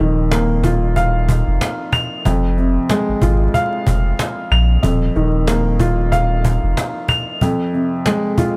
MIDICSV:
0, 0, Header, 1, 4, 480
1, 0, Start_track
1, 0, Tempo, 645161
1, 1675, Time_signature, 4, 2, 24, 8
1, 6375, End_track
2, 0, Start_track
2, 0, Title_t, "Upright piano"
2, 0, Program_c, 0, 0
2, 0, Control_c, 0, 64, 127
2, 0, Note_on_c, 0, 41, 86
2, 0, Note_on_c, 0, 51, 82
2, 233, Note_on_c, 0, 58, 87
2, 477, Note_on_c, 0, 65, 83
2, 716, Note_on_c, 0, 77, 92
2, 1434, Note_on_c, 0, 101, 102
2, 1669, Note_off_c, 0, 41, 0
2, 1674, Note_off_c, 0, 58, 0
2, 1675, Note_off_c, 0, 101, 0
2, 1676, Note_off_c, 0, 65, 0
2, 1676, Note_off_c, 0, 77, 0
2, 1677, Note_off_c, 0, 51, 0
2, 1681, Note_on_c, 0, 41, 93
2, 1686, Control_c, 0, 64, 0
2, 1792, Control_c, 0, 64, 127
2, 1916, Note_on_c, 0, 48, 80
2, 2161, Note_on_c, 0, 56, 91
2, 2396, Note_on_c, 0, 65, 83
2, 2634, Note_on_c, 0, 77, 97
2, 3360, Note_on_c, 0, 101, 97
2, 3579, Note_off_c, 0, 41, 0
2, 3590, Note_on_c, 0, 41, 87
2, 3595, Note_off_c, 0, 77, 0
2, 3596, Note_off_c, 0, 48, 0
2, 3596, Note_off_c, 0, 65, 0
2, 3598, Note_off_c, 0, 101, 0
2, 3599, Note_off_c, 0, 56, 0
2, 3607, Control_c, 0, 64, 0
2, 3713, Control_c, 0, 64, 127
2, 3839, Note_on_c, 0, 51, 85
2, 4071, Note_on_c, 0, 58, 87
2, 4315, Note_on_c, 0, 65, 86
2, 4551, Note_on_c, 0, 77, 94
2, 5274, Note_on_c, 0, 101, 101
2, 5508, Note_off_c, 0, 41, 0
2, 5513, Note_off_c, 0, 58, 0
2, 5514, Note_off_c, 0, 77, 0
2, 5515, Note_off_c, 0, 65, 0
2, 5515, Note_off_c, 0, 101, 0
2, 5517, Note_off_c, 0, 51, 0
2, 5519, Note_on_c, 0, 41, 92
2, 5527, Control_c, 0, 64, 0
2, 5633, Control_c, 0, 64, 127
2, 5754, Note_on_c, 0, 48, 78
2, 6001, Note_on_c, 0, 56, 92
2, 6235, Note_on_c, 0, 65, 87
2, 6375, Note_off_c, 0, 41, 0
2, 6375, Note_off_c, 0, 48, 0
2, 6375, Note_off_c, 0, 56, 0
2, 6375, Note_off_c, 0, 65, 0
2, 6375, End_track
3, 0, Start_track
3, 0, Title_t, "Sub bass"
3, 0, Program_c, 1, 38
3, 0, Note_on_c, 1, 27, 103
3, 1065, Note_off_c, 1, 27, 0
3, 1095, Note_on_c, 1, 29, 92
3, 1178, Note_off_c, 1, 29, 0
3, 1677, Note_on_c, 1, 29, 116
3, 2069, Note_off_c, 1, 29, 0
3, 2295, Note_on_c, 1, 32, 50
3, 2335, Note_off_c, 1, 32, 0
3, 2393, Note_on_c, 1, 32, 97
3, 2590, Note_off_c, 1, 32, 0
3, 2877, Note_on_c, 1, 29, 89
3, 3072, Note_off_c, 1, 29, 0
3, 3356, Note_on_c, 1, 34, 94
3, 3552, Note_off_c, 1, 34, 0
3, 3596, Note_on_c, 1, 27, 110
3, 3792, Note_off_c, 1, 27, 0
3, 3836, Note_on_c, 1, 27, 102
3, 4905, Note_off_c, 1, 27, 0
3, 4934, Note_on_c, 1, 29, 88
3, 5017, Note_off_c, 1, 29, 0
3, 6375, End_track
4, 0, Start_track
4, 0, Title_t, "Cajon"
4, 234, Note_on_c, 9, 38, 115
4, 309, Note_off_c, 9, 38, 0
4, 473, Note_on_c, 9, 36, 95
4, 547, Note_off_c, 9, 36, 0
4, 715, Note_on_c, 9, 36, 83
4, 719, Note_on_c, 9, 38, 53
4, 790, Note_off_c, 9, 36, 0
4, 794, Note_off_c, 9, 38, 0
4, 957, Note_on_c, 9, 36, 109
4, 1031, Note_off_c, 9, 36, 0
4, 1199, Note_on_c, 9, 38, 124
4, 1274, Note_off_c, 9, 38, 0
4, 1432, Note_on_c, 9, 36, 95
4, 1506, Note_off_c, 9, 36, 0
4, 1676, Note_on_c, 9, 36, 103
4, 1751, Note_off_c, 9, 36, 0
4, 1918, Note_on_c, 9, 38, 30
4, 1992, Note_off_c, 9, 38, 0
4, 2154, Note_on_c, 9, 38, 116
4, 2228, Note_off_c, 9, 38, 0
4, 2392, Note_on_c, 9, 36, 98
4, 2467, Note_off_c, 9, 36, 0
4, 2635, Note_on_c, 9, 36, 84
4, 2639, Note_on_c, 9, 38, 54
4, 2709, Note_off_c, 9, 36, 0
4, 2713, Note_off_c, 9, 38, 0
4, 2876, Note_on_c, 9, 36, 108
4, 2950, Note_off_c, 9, 36, 0
4, 3119, Note_on_c, 9, 38, 120
4, 3193, Note_off_c, 9, 38, 0
4, 3355, Note_on_c, 9, 38, 31
4, 3429, Note_off_c, 9, 38, 0
4, 3595, Note_on_c, 9, 36, 106
4, 3670, Note_off_c, 9, 36, 0
4, 3836, Note_on_c, 9, 38, 31
4, 3911, Note_off_c, 9, 38, 0
4, 4073, Note_on_c, 9, 38, 119
4, 4147, Note_off_c, 9, 38, 0
4, 4312, Note_on_c, 9, 36, 98
4, 4386, Note_off_c, 9, 36, 0
4, 4554, Note_on_c, 9, 36, 88
4, 4559, Note_on_c, 9, 38, 52
4, 4629, Note_off_c, 9, 36, 0
4, 4633, Note_off_c, 9, 38, 0
4, 4796, Note_on_c, 9, 36, 111
4, 4870, Note_off_c, 9, 36, 0
4, 5039, Note_on_c, 9, 38, 123
4, 5113, Note_off_c, 9, 38, 0
4, 5271, Note_on_c, 9, 36, 103
4, 5345, Note_off_c, 9, 36, 0
4, 5515, Note_on_c, 9, 36, 104
4, 5590, Note_off_c, 9, 36, 0
4, 5758, Note_on_c, 9, 38, 30
4, 5832, Note_off_c, 9, 38, 0
4, 5994, Note_on_c, 9, 38, 123
4, 6068, Note_off_c, 9, 38, 0
4, 6232, Note_on_c, 9, 36, 97
4, 6307, Note_off_c, 9, 36, 0
4, 6375, End_track
0, 0, End_of_file